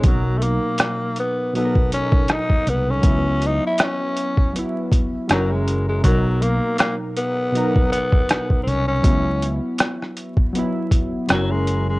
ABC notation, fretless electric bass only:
X:1
M:4/4
L:1/16
Q:"Swing 16ths" 1/4=80
K:B
V:1 name="Fretless electric bass" clef=bass
B,,,3 z8 z3 =C,,2 | C,,3 z8 z F,,,4 | B,,,3 z8 z3 =C,,2 | C,,3 z8 z F,,,4 |]